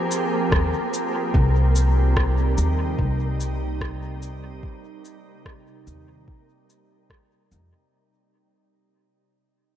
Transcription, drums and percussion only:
0.11 cabasa soft
0.52 kick loud
0.52 cross-stick medium
0.94 cabasa soft
1.34 kick loud
1.76 cabasa soft
2.16 kick loud
2.16 cross-stick medium
2.58 cabasa soft
2.99 kick medium
3.40 cabasa soft
3.81 kick loud
3.81 cross-stick medium
4.22 cabasa soft
4.63 kick loud
5.05 cabasa soft
5.46 kick loud
5.46 cross-stick medium
5.87 cabasa soft
6.28 kick medium
6.70 cabasa soft
7.10 kick medium
7.10 cross-stick medium
7.52 cabasa soft

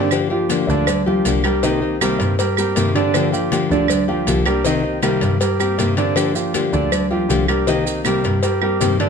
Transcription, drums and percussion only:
0.11 cowbell loud
0.11 high conga soft
0.11 claves medium
0.11 maracas medium
0.30 high conga soft
0.50 cowbell medium
0.50 high conga loud
0.50 maracas medium
0.70 maracas soft
0.87 cowbell loud
0.87 high conga soft
0.87 low conga medium
0.87 claves medium
0.87 maracas medium
1.08 high conga soft
1.08 low conga medium
1.25 cowbell medium
1.25 high conga medium
1.25 maracas medium
1.44 cowbell medium
1.44 high conga soft
1.44 claves medium
1.44 maracas soft
1.63 cowbell loud
1.63 high conga soft
1.63 maracas medium
1.83 high conga soft
2.01 cowbell medium
2.01 high conga medium
2.01 claves medium
2.01 maracas medium
2.20 cowbell medium
2.20 high conga soft
2.20 maracas soft
2.39 cowbell loud
2.39 high conga soft
2.39 maracas medium
2.57 high conga soft
2.57 claves medium
2.57 maracas medium
2.76 cowbell medium
2.76 high conga medium
2.76 maracas medium
2.96 cowbell medium
2.96 high conga soft
2.96 maracas soft
3.14 cowbell loud
3.14 high conga soft
3.14 claves medium
3.14 maracas medium
3.34 high conga soft
3.34 maracas medium
3.52 cowbell medium
3.52 high conga medium
3.52 maracas medium
3.71 high conga soft
3.71 maracas soft
3.88 cowbell loud
3.88 high conga soft
3.88 low conga medium
3.88 claves medium
3.88 maracas medium
4.09 high conga soft
4.09 low conga medium
4.27 cowbell medium
4.27 high conga medium
4.27 maracas medium
4.46 cowbell medium
4.46 high conga soft
4.46 claves medium
4.46 maracas soft
4.65 cowbell loud
4.65 maracas medium
4.84 high conga soft
5.03 cowbell medium
5.03 high conga medium
5.03 claves medium
5.03 maracas medium
5.21 cowbell medium
5.21 high conga soft
5.21 maracas soft
5.41 cowbell loud
5.41 high conga soft
5.41 maracas medium
5.60 high conga soft
5.60 claves medium
5.60 maracas medium
5.79 cowbell medium
5.79 high conga medium
5.79 maracas medium
5.97 cowbell medium
5.97 high conga soft
5.97 maracas soft
6.16 cowbell loud
6.16 claves medium
6.16 maracas medium
6.35 high conga soft
6.35 maracas medium
6.54 cowbell medium
6.54 high conga medium
6.54 maracas medium
6.73 high conga soft
6.73 maracas soft
6.92 cowbell loud
6.92 high conga soft
6.92 low conga medium
6.92 claves medium
6.92 maracas medium
7.11 high conga soft
7.11 low conga medium
7.30 cowbell medium
7.30 high conga medium
7.30 maracas medium
7.48 cowbell medium
7.48 high conga soft
7.48 claves medium
7.48 maracas soft
7.67 cowbell loud
7.67 high conga soft
7.67 maracas medium
7.86 high conga soft
7.86 maracas medium
8.05 cowbell medium
8.05 high conga loud
8.05 claves medium
8.05 maracas medium
8.24 cowbell medium
8.24 maracas soft
8.43 cowbell loud
8.43 high conga soft
8.43 maracas medium
8.62 high conga soft
8.62 claves medium
8.81 cowbell medium
8.81 high conga medium
8.81 maracas medium
9.00 cowbell medium
9.00 high conga soft
9.00 maracas soft

